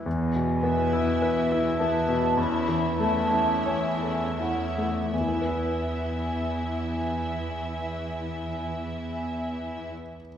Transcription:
<<
  \new Staff \with { instrumentName = "Flute section" } { \time 4/4 \key e \major \tempo 4 = 45 gis''4. a''8 b''8 a''8 gis''8 fis''8 | gis''1 | }
  \new Staff \with { instrumentName = "Violin section" } { \time 4/4 \key e \major r8 <e' e''>4 <e' e''>8 <e' e''>8 <e' e''>4 <e' e''>8 | <e' e''>1 | }
  \new Staff \with { instrumentName = "Viola section" } { \time 4/4 \key e \major r8 <b e'>4 <b e'>8 <cis' e'>8 <cis' e'>4 <cis' e'>8 | <b e'>1 | }
  \new Staff \with { instrumentName = "Grand piano" } { \time 4/4 \key e \major e,16 b,16 b16 e'16 b'16 e'16 b16 b,16 e,16 e16 a16 e'16 cis''16 a'16 e'16 a16 | <e, e b e' b' e''>1 | }
  \new Staff \with { instrumentName = "Cello section" } { \clef bass \time 4/4 \key e \major e,4 e,4 e,4 e,4 | e,1 | }
>>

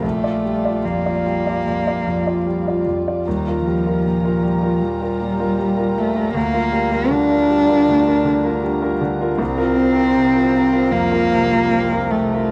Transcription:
<<
  \new Staff \with { instrumentName = "Grand piano" } { \time 4/4 \key bes \major \tempo 4 = 78 bes,,16 <f' d''>16 g16 <f' d''>16 f,16 <f' d''>16 g16 <f' d''>16 f,16 <f' d''>16 f,16 <f' d''>16 g16 <f' d''>16 f,16 <f' d''>16 | ees,16 <f' bes'>16 g16 <f' bes'>16 bes,16 <f' bes'>16 g16 <f' bes'>16 bes,16 <f' bes'>16 bes,16 <f' bes'>16 g16 <f' bes'>16 bes,16 <f' bes'>16 | d,16 <f' bes'>16 g16 <f' bes'>16 d16 <f' bes'>16 g16 <f' bes'>16 d,16 <f' bes'>16 d16 <f' bes'>16 g16 <f' bes'>16 d16 <f' bes'>16 | c,16 <f' bes'>16 c'16 <f' bes'>16 c16 <f' bes'>16 c'16 <f' bes'>16 f,16 <f' bes'>16 c16 <f' bes'>16 c'16 <f' bes'>16 c16 <f' bes'>16 | }
  \new Staff \with { instrumentName = "String section" } { \time 4/4 \key bes \major << { <f' d''>1 | <f' bes''>1~ | <f' bes''>1 | <f' bes''>1 | } \\ { g1~ | g1 | g1 | c'1 | } >> }
  \new Staff \with { instrumentName = "Cello" } { \time 4/4 \key bes \major a4 bes2~ bes8 r8 | g8 f4. g4. a8 | bes4 d'2~ d'8 r8 | c'2 bes4. a8 | }
>>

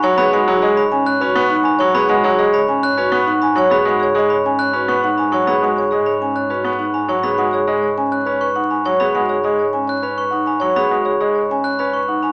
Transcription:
<<
  \new Staff \with { instrumentName = "Glockenspiel" } { \time 3/4 \key gis \minor \tempo 4 = 102 cis'''16 b''16 r8. b''16 r16 fis'''16 b''16 cis'''16 r16 b''16 | cis'''16 b''16 r8. b''16 r16 fis'''16 b''16 cis'''16 r16 b''16 | cis'''16 b''16 r8. b''16 r16 fis'''16 b''16 cis'''16 r16 b''16 | cis'''16 b''16 r8. b''16 r16 fis'''16 b''16 cis'''16 r16 b''16 |
cis'''16 b''16 r4 r16 fis'''16 b''16 cis'''16 r16 b''16 | cis'''16 b''16 r4 r16 fis'''16 b''16 cis'''16 r16 b''16 | cis'''16 b''16 r4 r16 fis'''16 b''16 cis'''16 r16 b''16 | }
  \new Staff \with { instrumentName = "Marimba" } { \time 3/4 \key gis \minor cis''16 r16 fis''16 cis''16 dis''16 r16 gis''16 cis''16 b'16 r16 fis''16 gis''16 | cis''16 r16 fis''16 cis''16 dis''16 r16 gis''16 cis''16 b'16 r16 fis''16 gis''16 | cis''16 r16 fis''16 cis''16 dis''16 r16 gis''16 cis''16 b'16 r16 fis''16 gis''16 | cis''16 r16 fis''16 cis''16 dis''16 r16 gis''16 cis''16 b'16 r16 fis''16 gis''16 |
cis''16 r16 fis''16 cis''16 dis''16 r16 gis''16 cis''16 b'16 r16 fis''16 gis''16 | cis''16 r16 fis''16 cis''16 dis''16 r16 gis''16 cis''16 b'16 r16 fis''16 gis''16 | cis''16 r16 fis''16 cis''16 dis''16 r16 gis''16 cis''16 b'16 r16 fis''16 gis''16 | }
  \new Staff \with { instrumentName = "Vibraphone" } { \time 3/4 \key gis \minor cis''16 gis'16 fis'16 gis'16 gis'16 cis''16 cis'16 r16 fis'16 b'16 dis'16 r16 | cis''16 gis'16 fis'16 gis'16 gis'16 cis''16 cis'16 r16 fis'16 b'16 dis'16 r16 | cis''16 gis'16 fis'16 gis'16 gis'16 cis''16 cis'16 r16 fis'16 b'16 dis'16 r16 | cis''16 gis'16 fis'16 gis'16 gis'16 cis''16 cis'16 r16 fis'16 b'16 dis'16 r16 |
cis''16 gis'16 fis'16 gis'16 gis'16 cis''16 cis'16 r8 b'16 dis'16 r16 | cis''16 gis'16 fis'16 gis'16 gis'16 cis''16 cis'16 r8 b'16 dis'16 r16 | cis''16 gis'16 fis'16 gis'16 gis'16 cis''16 cis'16 r8 b'16 dis'16 r16 | }
  \new Staff \with { instrumentName = "Grand piano" } { \clef bass \time 3/4 \key gis \minor fis16 b16 gis16 fis16 gis16 r8. cis'16 b16 r8 | fis16 b16 gis16 fis16 gis16 r8. cis'16 b16 r8 | fis16 b16 gis16 r16 gis16 r8. cis'16 b16 r8 | fis16 b16 gis16 r16 gis16 r8. cis'16 b16 r8 |
fis16 b16 gis16 r16 gis16 r8. cis'16 r8. | fis16 b16 gis16 r16 gis16 r8. cis'16 r8. | fis16 b16 gis16 r16 gis16 r8. cis'16 r8. | }
  \new Staff \with { instrumentName = "Double bass section" } { \clef bass \time 3/4 \key gis \minor gis,2.~ | gis,2.~ | gis,2.~ | gis,2.~ |
gis,2.~ | gis,2.~ | gis,2. | }
>>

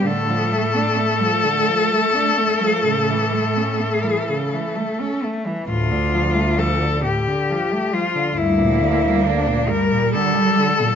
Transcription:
<<
  \new Staff \with { instrumentName = "Cello" } { \time 12/8 \key d \minor \tempo 4. = 43 a'1~ a'4. r8 | f'4 a'8 g'4 f'8 e'4 d'8 bes'8 a'4 | }
  \new Staff \with { instrumentName = "Cello" } { \time 12/8 \key d \minor a1~ a4~ a16 r8. | r2. bes4. g4. | }
  \new Staff \with { instrumentName = "Cello" } { \clef bass \time 12/8 \key d \minor d16 f16 a16 d'16 a16 f16 d16 f16 a16 d'16 a16 f16 cis16 e16 a16 cis'16 a16 e16 cis16 e16 a16 cis'16 a16 e16 | a,16 d16 f16 a16 f16 d16 a,16 d16 f16 a16 f16 d16 g,16 bes,16 d16 g16 d16 bes,16 g,16 bes,16 d16 g16 d16 bes,16 | }
  \new Staff \with { instrumentName = "Cello" } { \clef bass \time 12/8 \key d \minor a,4. r4. a,4. r4. | d,4. r4. d,4. r4. | }
>>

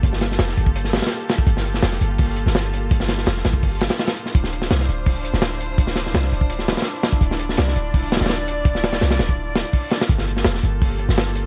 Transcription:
<<
  \new Staff \with { instrumentName = "String section" } { \time 4/4 \key g \dorian \tempo 4 = 167 << { <g' a'>1~ | <g' a'>1~ | <g' a'>1 | c''1~ |
c''1 | d''1~ | d''1 | <g' a'>1 | } \\ { <bes f'>1~ | <bes f'>1~ | <bes f'>1 | <d' e'>1~ |
<d' e'>1~ | <d' e'>1~ | <d' e'>1 | <bes f'>1 | } >> }
  \new Staff \with { instrumentName = "808-style bass" } { \clef bass \time 4/4 \key g \dorian g,,4 f,,8 g,,4~ g,,16 r4 r16 | g,,4 f,,8 g,,4~ g,,16 g,,4~ g,,16 | g,,4 f,,8 g,,4~ g,,16 r4 r16 | d,,4 c,8 d,,4~ d,,16 d,,4~ d,,16 |
d,,4 c,8 d,,4~ d,,16 r4 r16 | d,,4 c,8 d,,4~ d,,16 d,,4~ d,,16 | d,,4 c,8 d,,4~ d,,16 r4 r16 | g,,4 f,,8 g,,4~ g,,16 g,,4~ g,,16 | }
  \new DrumStaff \with { instrumentName = "Drums" } \drummode { \time 4/4 <hh bd>16 sn16 <hh sn>16 sn16 <hh sn>16 sn16 hh16 bd16 hh16 sn16 <hh sn>32 <hh sn>32 <hh sn>32 <hh sn>32 hh16 hh16 <hh sn>16 bd16 | <hh bd>16 sn16 hh16 sn16 <hh sn>16 sn16 hh8 <hho bd>8 hh16 sn16 <hh sn>16 hh16 hh8 | <hh bd>16 sn16 <hh sn>16 sn16 <hh sn>16 sn16 <hh sn>16 bd16 <hho bd>8 <hh sn>16 <hh sn>16 <hh sn>16 <hh sn>16 hh16 sn16 | <hh bd>16 sn16 hh16 sn16 <hh sn>16 sn16 hh8 <hho bd>8 hh16 sn16 <hh sn>16 hh16 hh8 |
<hh bd>16 sn16 <hh sn>16 sn16 <hh sn>16 sn16 hh16 bd16 hh16 sn16 <hh sn>32 <hh sn>32 <hh sn>32 <hh sn>32 hh16 hh16 <hh sn>16 bd16 | <hh bd>16 sn16 hh16 sn16 <hh sn>16 sn16 hh8 <hho bd>8 <hh sn>32 <hh sn>32 <hh sn>32 <hh sn>32 <hh sn>16 hh16 hh8 | <hh bd>16 sn16 <hh sn>16 <hh sn>16 <hh sn>16 <hh sn>16 <hh sn>16 bd16 r8 <hh sn>16 hh16 <hho bd>8 <hh sn>16 <hh sn>16 | <hh bd>16 sn16 hh16 sn16 <hh sn>16 sn16 hh8 <hho bd>8 hh16 sn16 <hh sn>16 hh16 hh8 | }
>>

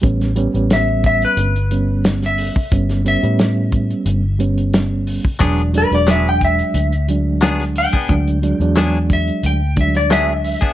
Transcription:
<<
  \new Staff \with { instrumentName = "Electric slide guitar" } { \time 4/4 \key a \major \tempo 4 = 89 r4 e''8 e''16 b'4. e''8.~ | e''8 e''2 r4. | r8 b'16 d''16 e''16 g''16 e''4 r4 g''8~ | g''4. e''8 g''8 e''16 d''16 e''4 | }
  \new Staff \with { instrumentName = "Clean electric guitar" } { \time 4/4 \key a \major r1 | r1 | <fis b d' gis'>16 r8. <fis b d' gis'>16 r4. r16 <fis b d' gis'>16 r8 <b d' gis'>16 | r4 <fis b d' gis'>16 r4. r16 <fis b d' gis'>16 r8 <b d' gis'>16 | }
  \new Staff \with { instrumentName = "Reed electric piano" } { \time 4/4 \key a \major <g b cis'>8 <g b cis'>16 <g b cis'>4. r16 <g b cis'>4~ <g b cis'>16 r16 | <g b cis'>8 <g b cis'>16 <g b cis'>4. r16 <g b cis'>4~ <g b cis'>16 r16 | <fis gis d'>8 <fis gis d'>16 <fis gis d'>4. r16 <fis gis d'>4~ <fis gis d'>16 r16 | <fis gis d'>8 <fis gis d'>16 <fis gis d'>4. r16 <fis gis d'>4~ <fis gis d'>16 r16 | }
  \new Staff \with { instrumentName = "Fingered electric bass" } { \clef bass \time 4/4 \key a \major a,,8. a,,4~ a,,16 g,,2 | g,,8. a,4~ a,16 g,,2 | e,,8. e,,4~ e,,16 d,2 | d,8. e,4~ e,16 d,2 | }
  \new DrumStaff \with { instrumentName = "Drums" } \drummode { \time 4/4 <hh bd>16 <hh sn>16 hh16 hh16 <hh sn>8 <hh bd>16 hh16 hh16 hh16 hh8 <hh sn>16 <hh sn>16 hho16 bd16 | <hh bd>16 <hh sn>16 hh16 hh16 <hh sn>8 <hh bd>16 hh16 hh8 hh16 hh16 <hh sn>8 hho16 bd16 | <hh bd>16 hh16 hh16 hh16 <hh sn>8 <hh bd>16 hh16 hh16 hh16 hh8 <hh sn>16 <hh sn>16 hho16 bd16 | <hh bd>16 hh16 hh16 hh16 <hh sn>8 <hh bd>16 hh16 hh8 <hh bd>16 <hh sn>16 <hh sn>8 hho16 bd16 | }
>>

